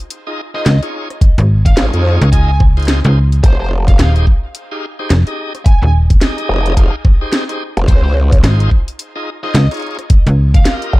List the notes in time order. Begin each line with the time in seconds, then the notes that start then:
0.10 closed hi-hat
0.27 D#4 F4 G#4 D#5
0.55 D#4 F4 G#4 C5 D#5
0.66 C#2 D#5, snare, closed hi-hat
0.82 D#4 F4 G#4 C#5, closed hi-hat
1.10 cross-stick, closed hi-hat
1.21 kick, closed hi-hat
1.38 G#1, closed hi-hat
1.66 F5, kick, closed hi-hat
1.77 G#1 D#4 F4 G#4 C#5, snare, closed hi-hat
1.94 F2, closed hi-hat
2.21 C#2, cross-stick, closed hi-hat
2.32 D#4 F4 G#4 D#5 G#5, kick, closed hi-hat
2.49 G#5
2.60 kick, cross-stick
2.77 D#4 F4 G#4 C5, closed hi-hat
2.80 closed hi-hat
2.82 closed hi-hat
2.85 snare, closed hi-hat
2.88 closed hi-hat
3.04 C#2 D#4 F4 G#4 C5, closed hi-hat
3.32 closed hi-hat
3.43 F1 C5, kick, closed hi-hat
3.61 C5
3.88 F5, kick, closed hi-hat
3.99 D#1 D#4 G4 G#4 C5 F5, snare, closed hi-hat
4.16 closed hi-hat
4.27 kick
4.55 closed hi-hat
4.71 D#4 G4 G#4 F5
4.99 D#4 G4 G#4 C5
5.10 F1, snare, closed hi-hat
5.27 D#4 G4 G#4 D#5, closed hi-hat
5.55 cross-stick, closed hi-hat
5.66 G#5, kick, closed hi-hat
5.82 D#1 G#5
6.10 kick, closed hi-hat
6.21 D#4 G4 G#4 D#5, snare, closed hi-hat
6.38 closed hi-hat
6.49 F1
6.66 closed hi-hat
6.77 D#4 G4 G#4 F5, kick, closed hi-hat
7.05 kick, cross-stick
7.21 D#4 G4 G#4 C5
7.33 snare, closed hi-hat
7.49 D#4 G4 G#4 C5, closed hi-hat
7.77 F1, closed hi-hat
7.88 C#2 C5, kick, closed hi-hat
8.05 C5
8.32 kick, closed hi-hat
8.43 G#1 D#4 F4 G#4 C5, snare, closed hi-hat
8.60 closed hi-hat
8.71 kick
8.88 closed hi-hat
8.99 closed hi-hat
9.16 D#4 F4 G#4 D#5
9.43 D#4 F4 G#4 C5 D#5
9.54 C#2 D#5, snare, closed hi-hat
9.71 D#4 F4 G#4 C#5, closed hi-hat
9.74 closed hi-hat
9.77 closed hi-hat
9.82 closed hi-hat
9.86 closed hi-hat
9.91 closed hi-hat
9.95 cross-stick, closed hi-hat
9.99 closed hi-hat
10.10 kick, closed hi-hat
10.27 C#2, closed hi-hat
10.54 F5, kick, closed hi-hat
10.65 F4 G4 A#4 D#5, snare, closed hi-hat
10.82 closed hi-hat
10.93 D#1, kick